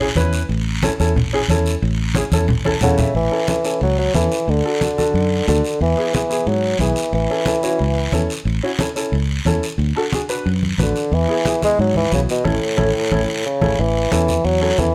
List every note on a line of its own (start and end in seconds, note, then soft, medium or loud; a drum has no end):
0.00 0.06 C#4 medium
0.00 0.06 E4 medium
0.00 0.06 G#4 medium
0.15 0.42 E2 medium
0.15 0.40 C#4 medium
0.15 0.40 E4 medium
0.15 0.40 B4 medium
0.15 high conga medium
0.15 short guiro medium
0.33 short guiro medium
0.49 0.89 A1 loud
0.49 high conga soft
0.49 long guiro medium
0.83 0.89 C#4 medium
0.83 0.89 E4 medium
0.83 0.89 A4 medium
0.83 high conga loud
0.83 short guiro medium
1.00 1.15 E2 medium
1.00 1.11 C#4 medium
1.00 1.11 E4 medium
1.00 1.11 A4 medium
1.00 short guiro medium
1.15 1.42 A1 medium
1.15 high conga soft
1.15 low conga medium
1.15 long guiro medium
1.33 1.39 C#4 medium
1.33 1.39 E4 medium
1.33 1.39 G#4 medium
1.48 1.75 E2 medium
1.48 1.73 C#4 medium
1.48 1.73 E4 medium
1.48 1.73 A4 medium
1.48 high conga medium
1.48 short guiro medium
1.66 short guiro medium
1.82 2.22 A1 loud
1.82 high conga soft
1.82 long guiro medium
2.15 2.21 C#4 medium
2.15 2.21 E4 medium
2.15 2.22 G#4 medium
2.15 high conga medium
2.15 short guiro medium
2.32 2.48 E2 loud
2.32 2.44 C#4 medium
2.32 2.44 E4 medium
2.32 2.44 A4 medium
2.32 high conga medium
2.32 short guiro medium
2.48 2.75 A1 medium
2.48 high conga soft
2.48 low conga medium
2.48 long guiro medium
2.65 2.71 C#4 medium
2.65 2.71 E4 medium
2.65 2.71 A4 medium
2.65 2.81 A5 medium
2.65 high conga medium
2.81 3.08 E2 medium
2.81 3.13 C#3 medium
2.81 3.05 C#4 medium
2.81 3.06 E4 medium
2.81 3.06 A4 medium
2.81 2.98 F#5 medium
2.81 low conga medium
2.81 short guiro medium
2.98 3.14 E5 medium
2.98 low conga medium
2.98 short guiro medium
3.15 3.28 A1 medium
3.15 3.46 E3 medium
3.15 high conga soft
3.15 long guiro medium
3.31 3.37 C#4 medium
3.31 3.37 E4 medium
3.31 3.37 A4 medium
3.48 3.79 E3 medium
3.48 3.54 C#4 medium
3.48 3.54 E4 medium
3.48 3.54 A4 medium
3.48 high conga medium
3.48 short guiro medium
3.64 3.82 C#4 medium
3.64 3.82 E4 medium
3.64 3.83 A4 medium
3.64 short guiro medium
3.81 4.08 C#2 medium
3.81 3.98 F#3 medium
3.81 high conga soft
3.81 long guiro medium
3.99 4.14 F#3 medium
4.14 4.28 E2 medium
4.14 4.51 E3 medium
4.14 4.32 C#4 medium
4.14 4.32 E4 medium
4.14 4.32 A4 medium
4.14 high conga medium
4.14 short guiro medium
4.32 short guiro medium
4.48 4.61 D2 medium
4.48 5.48 D3 medium
4.48 high conga soft
4.48 long guiro medium
4.64 4.70 D4 medium
4.64 4.71 F#4 medium
4.64 4.71 A4 medium
4.81 4.87 D4 medium
4.81 4.87 F#4 medium
4.81 4.87 A4 medium
4.81 high conga medium
4.81 short guiro medium
4.97 5.15 D4 medium
4.97 5.15 F#4 medium
4.97 5.15 A4 medium
4.97 high conga medium
4.97 short guiro medium
5.14 5.41 F#2 medium
5.14 high conga soft
5.14 long guiro medium
5.47 5.61 D2 medium
5.47 5.79 D3 medium
5.47 5.65 D4 medium
5.47 5.65 F#4 medium
5.47 5.65 A4 medium
5.47 high conga medium
5.47 short guiro medium
5.65 short guiro medium
5.81 5.94 E2 loud
5.81 6.12 E3 medium
5.81 high conga soft
5.81 long guiro medium
5.97 6.03 B3 medium
5.97 6.03 E4 medium
5.97 6.04 G#4 medium
6.13 6.50 E3 medium
6.13 6.19 B3 medium
6.13 6.19 E4 medium
6.13 6.20 G#4 medium
6.13 high conga medium
6.13 short guiro medium
6.30 6.48 B3 medium
6.30 6.48 E4 medium
6.30 6.48 G#4 medium
6.30 short guiro medium
6.46 6.73 G#2 medium
6.46 6.80 F#3 medium
6.46 high conga soft
6.46 long guiro medium
6.79 6.93 B1 medium
6.79 7.11 E3 medium
6.79 6.98 B3 medium
6.79 6.98 E4 medium
6.79 6.98 G#4 medium
6.79 high conga medium
6.79 short guiro medium
6.96 short guiro medium
7.13 7.26 A1 medium
7.13 8.26 E3 medium
7.13 high conga soft
7.13 long guiro medium
7.30 7.36 C#4 medium
7.30 7.36 E4 medium
7.30 7.37 A4 medium
7.46 7.52 C#4 medium
7.46 7.53 E4 medium
7.46 7.53 A4 medium
7.46 high conga medium
7.46 short guiro medium
7.63 7.81 C#4 medium
7.63 7.81 E4 medium
7.63 7.81 F#4 medium
7.63 short guiro medium
7.79 8.07 C#2 medium
7.79 high conga soft
7.79 long guiro medium
8.12 8.26 E2 medium
8.12 8.31 C#4 medium
8.12 8.31 E4 medium
8.12 8.31 A4 medium
8.12 high conga medium
8.12 short guiro medium
8.30 short guiro medium
8.45 8.59 A1 medium
8.45 high conga soft
8.45 long guiro medium
8.63 8.69 C#4 medium
8.63 8.69 E4 medium
8.63 8.69 F#4 medium
8.79 8.86 C#4 medium
8.79 8.86 E4 medium
8.79 8.86 A4 medium
8.79 high conga medium
8.79 short guiro medium
8.96 9.14 C#4 medium
8.96 9.14 E4 medium
8.96 9.14 A4 medium
8.96 short guiro medium
9.12 9.39 C#2 medium
9.12 high conga soft
9.12 long guiro medium
9.45 9.59 E2 medium
9.45 9.64 C#4 medium
9.45 9.64 E4 medium
9.45 9.64 A4 medium
9.45 high conga medium
9.45 short guiro medium
9.63 short guiro medium
9.78 9.92 D2 medium
9.78 high conga soft
9.78 long guiro medium
9.96 10.02 D4 medium
9.96 10.02 F#4 medium
9.96 10.02 A4 medium
10.12 10.19 D4 medium
10.12 10.19 F#4 medium
10.12 10.19 G#4 medium
10.12 high conga medium
10.12 short guiro medium
10.29 10.47 D4 medium
10.29 10.47 F#4 medium
10.29 10.47 B4 medium
10.29 short guiro medium
10.46 10.72 F#2 medium
10.46 high conga soft
10.46 long guiro medium
10.63 high conga medium
10.78 10.92 A1 medium
10.78 10.96 D4 medium
10.78 10.97 F#4 medium
10.78 10.97 B4 medium
10.78 high conga medium
10.78 short guiro medium
10.83 11.16 D3 medium
10.96 short guiro medium
11.12 11.25 E2 loud
11.12 11.63 E3 medium
11.12 high conga soft
11.12 long guiro medium
11.28 11.35 B3 medium
11.28 11.35 E4 medium
11.28 11.35 G#4 medium
11.45 11.51 B3 medium
11.45 11.51 E4 medium
11.45 11.52 G#4 medium
11.45 high conga medium
11.45 short guiro medium
11.62 11.79 G#3 loud
11.62 11.80 B3 medium
11.62 11.80 E4 medium
11.62 11.80 G#4 medium
11.62 high conga medium
11.62 short guiro medium
11.79 12.06 G#2 medium
11.79 11.95 F#3 medium
11.79 high conga soft
11.79 long guiro medium
11.95 12.12 E3 medium
11.95 high conga medium
12.11 12.26 B1 medium
12.11 12.21 C#3 medium
12.11 12.29 B3 medium
12.11 12.30 E4 medium
12.11 12.30 F#4 medium
12.11 high conga medium
12.11 short guiro medium
12.29 12.45 B2 medium
12.29 short guiro medium
12.44 12.58 A1 medium
12.44 13.42 A2 medium
12.44 12.56 C#4 medium
12.44 12.56 E4 medium
12.44 12.56 A4 medium
12.44 high conga medium
12.44 long guiro medium
12.77 12.91 A1 medium
12.77 12.88 C#4 medium
12.77 12.89 E4 medium
12.77 12.89 A4 medium
12.77 high conga medium
12.77 long guiro medium
13.11 13.24 A1 medium
13.11 13.23 C#4 medium
13.11 13.23 E4 medium
13.11 13.23 A4 medium
13.11 high conga medium
13.11 long guiro loud
13.46 13.81 C#3 medium
13.61 13.74 A1 medium
13.61 13.73 C#4 medium
13.61 13.73 E4 medium
13.61 13.72 A4 medium
13.61 high conga medium
13.61 long guiro medium
13.79 14.06 A1 medium
13.79 14.12 E3 medium
13.79 high conga soft
13.79 long guiro medium
14.11 14.38 E2 medium
14.11 14.47 E3 medium
14.11 14.29 C#4 medium
14.11 14.29 E4 medium
14.11 14.29 A4 medium
14.11 high conga medium
14.11 short guiro medium
14.28 high conga medium
14.28 short guiro medium
14.44 14.71 E2 medium
14.44 14.81 F#3 medium
14.44 high conga soft
14.44 long guiro medium
14.61 14.67 C#4 medium
14.61 14.68 E4 medium
14.61 14.68 A4 medium
14.78 14.95 E2 medium
14.78 14.95 E3 medium
14.78 14.84 C#4 medium
14.78 14.84 E4 medium
14.78 14.84 A4 medium
14.78 high conga medium
14.78 short guiro medium